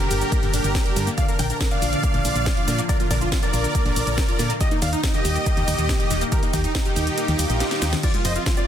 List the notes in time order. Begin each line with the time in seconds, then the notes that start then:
Already playing: A#2 D3 G3 D4 G5
0.00 G4 A#4
0.11 G1 G4, open hi-hat, shaker
0.21 D3, closed hi-hat, shaker
0.32 A#3, kick, closed hi-hat, shaker
0.43 G1 D3, closed hi-hat
0.53 G1 D4, open hi-hat, shaker
0.64 G1 D3, closed hi-hat, shaker
0.75 kick, snare, closed hi-hat, shaker
0.86 G4, closed hi-hat
0.96 G2 D3, open hi-hat, shaker
1.07 A#3, closed hi-hat, shaker
1.18 D3 F3 F4 D5 F5, kick, closed hi-hat, shaker
1.28 A#3 A#4, closed hi-hat, shaker
1.39 A#1 D3 A#4 G5, open hi-hat, shaker
1.50 D4 A#4, closed hi-hat, shaker
1.61 A#4, kick, snare, closed hi-hat, shaker
1.71 D3 D5 F5, closed hi-hat, shaker
1.82 A#1 F4, open hi-hat, shaker
1.93 D3, closed hi-hat, shaker
2.03 A#3, kick, closed hi-hat, shaker
2.14 A#1 D3, closed hi-hat
2.25 A#1 D4, open hi-hat, shaker
2.35 A#1 D3, closed hi-hat, shaker
2.46 kick, snare, closed hi-hat, shaker
2.57 F4, closed hi-hat
2.68 A#2 D3, open hi-hat, shaker
2.78 A#3, closed hi-hat, shaker
2.89 D3 A#4 D5, kick, closed hi-hat, shaker
3.00 A#3 F4, closed hi-hat, shaker
3.10 A#1 D3 A#4 D5, kick, open hi-hat, shaker
3.21 D4 F4, closed hi-hat, shaker
3.32 F4, kick, snare, closed hi-hat, shaker
3.42 D3 A#4 D5, closed hi-hat, shaker
3.53 A#1 F4, open hi-hat, shaker
3.64 D3, closed hi-hat, shaker
3.75 A#3, kick, closed hi-hat, shaker
3.86 A#1 D3, closed hi-hat
3.96 A#1 D4, open hi-hat, shaker
4.07 A#1 D3, closed hi-hat, shaker
4.18 kick, snare, closed hi-hat, shaker
4.28 F4, closed hi-hat
4.39 A#2 D3, open hi-hat, shaker
4.50 A#3, closed hi-hat, shaker
4.61 D#3 A#3 D#4 G4 D#5, kick, closed hi-hat, shaker
4.71 A#3 D#4, closed hi-hat, shaker
4.82 D#2 D#3 D5 F5, open hi-hat, shaker
4.93 D#4, closed hi-hat, shaker
5.03 D#4, kick, snare, closed hi-hat, shaker
5.14 D#3 G4 D#5, closed hi-hat, shaker
5.25 D#2 G4, open hi-hat, shaker
5.35 D#3, closed hi-hat, shaker
5.46 A#3, kick, closed hi-hat, shaker
5.57 D#2 D#3, closed hi-hat
5.68 D#2 D#4, open hi-hat, shaker
5.78 D#2 D#3, closed hi-hat, shaker
5.89 kick, snare, closed hi-hat, shaker
6.00 G4, closed hi-hat
6.11 D#1 D#3, open hi-hat, shaker
6.21 A#3, closed hi-hat, shaker
6.32 D#3 G4 A#4, kick, closed hi-hat, shaker
6.43 A#3 D#4, closed hi-hat, shaker
6.53 D#2 D#3 D#4 G4, kick, open hi-hat, shaker
6.64 D#4, closed hi-hat, shaker
6.75 D#4, kick, snare, closed hi-hat, shaker
6.85 D#3 D#4 G4, closed hi-hat, shaker
6.96 D#2 G4, open hi-hat, shaker
7.07 D#3, closed hi-hat, shaker
7.18 A#3, closed hi-hat, swell, shaker
7.28 D#2 D#3, closed hi-hat
7.39 D#2 G3, open hi-hat, shaker
7.50 A#1 D#5, closed hi-hat, shaker
7.60 G4, snare, closed hi-hat, shaker
7.71 G4, snare, closed hi-hat, shaker
7.82 D#2 D#4, snare, open hi-hat, shaker
7.93 D#3, snare, closed hi-hat, shaker
8.03 C3 F3 G#3 F4 D5, kick, closed hi-hat, crash, shaker
8.14 G#3 F4, closed hi-hat, shaker
8.25 F1 F3 C5 D#5, open hi-hat, shaker
8.36 C4 F4, closed hi-hat, shaker
8.46 F4, kick, snare, closed hi-hat, shaker
8.57 F3 F4 D5, closed hi-hat, shaker